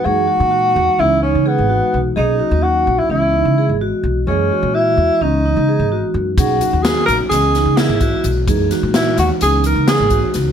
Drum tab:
HH |---------|---------|---------|xxxxxxxxx|
SD |---------|---------|---------|--o-ooo--|
BD |---------|---------|---------|o------o-|

HH |xxxxxxxxx|
SD |-oo---o-o|
BD |o------o-|